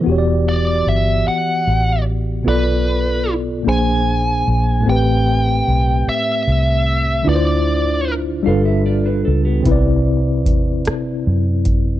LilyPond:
<<
  \new Staff \with { instrumentName = "Lead electric guitar" } { \time 6/8 \key e \minor \tempo 4. = 50 r8 d''8 e''8 fis''4 r8 | b'4 r8 gis''4. | g''4. e''4. | d''4 r2 |
r2. | }
  \new Staff \with { instrumentName = "Clean electric guitar" } { \time 6/8 \key e \minor r2. | r2. | r2. | r4. <a' f''>16 <g' e''>16 <f' d''>16 <d' b'>16 a'16 <b g'>16~ |
<b g'>16 r2 r8. | }
  \new Staff \with { instrumentName = "Tine electric piano" } { \time 6/8 \key e \minor <e b fis' g' cis'' d''>2. | <b, b f' a' d''>4. <ais, ais d' gis' bis'>4. | <a, a c' g' b'>2. | <d d' e' f' b' c''>4. <g d' f' a' b'>4. |
<c c' e' b' d''>2. | }
  \new Staff \with { instrumentName = "Fingered electric bass" } { \clef bass \time 6/8 \key e \minor e,,4 g,,8 r8 a,,4 | b,,4. ais,,4 ais,,8 | a,,4 b,,8 r8 c,4 | d,4. g,,4 cis,8 |
c,4 e,8 r8 fis,4 | }
  \new DrumStaff \with { instrumentName = "Drums" } \drummode { \time 6/8 r4. r4. | r4. r4. | r4. r4. | r4. r4. |
<hh bd>4 <hh bd>8 <hh ss>4 <hh bd>8 | }
>>